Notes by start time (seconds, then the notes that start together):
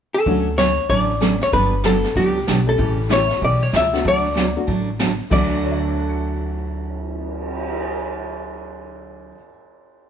0.14 A4
0.26 D2 D3 F#3 A3 C#4 D4 F#4, brush sweep, kick
0.58 D3 F#3 A3 C#4 F#4 C#5, snare, hi-hat pedal
0.89 A1 D3 F#3 A3 C#4 F#4 D5, brush sweep, kick
1.21 D3 F#3 A3 C#4 D4 F#4 A4, snare, hi-hat pedal
1.41 C#5, snare
1.52 G1 D3 F#3 B3 D4 G4 B4, brush sweep, kick
1.84 D3 F#3 G3 B3 D4 F#4 G4 A4, snare, hi-hat pedal
2.04 snare
2.16 C#2 D3 F#3 B3 D4 G4, brush sweep, kick
2.47 B1 D3 F#3 B3 D4 G4, snare, hi-hat pedal
2.67 G3 A3 C#4 G4 A4
2.78 A1 C#3 E3 A3 C#4 G4, brush sweep, kick
3.09 C#3 E3 G3 A3 C#4 E4 G4 C#5, snare, hi-hat pedal
3.30 snare
3.41 B1 C#3 E3 A3 C#4 G4 D5, brush sweep, kick
3.63 C#5
3.73 C#2 C#3 E3 A3 C#4 G4 E5, snare, hi-hat pedal
3.93 F#3 A3 D4 F#4, snare
4.03 D2 D3 F#3 A3 D4 F#4, brush sweep, kick
4.08 D5
4.34 D3 F#3 A3 D4 F#4, snare, hi-hat pedal
4.57 F#3 A3 D4 F#4
4.67 A1 D3 F#3 A3 D4 F#4, brush sweep, kick
4.99 D3 F#3 A3 D4 F#4, snare, hi-hat pedal
5.30 D2 D3 F#3 A3 D4 F#4 A4 D5, kick, crash
5.51 cymbal swell
5.64 C#5
5.72 E5
5.80 A5
5.89 D6
5.99 F#6
6.09 C#7